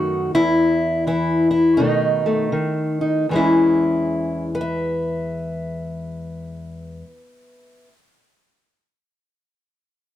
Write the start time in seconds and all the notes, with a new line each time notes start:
Already playing: F#2 D#3 A3 D#4 F#4
0.35 E2 E4
1.07 E3 E4
1.51 E4
1.77 B2 D#3 A3 D#4
2.26 A3
2.52 D#3
3.01 D#4
3.29 E2 E3 G#3
3.35 C#4 E4
4.55 B4
4.61 E5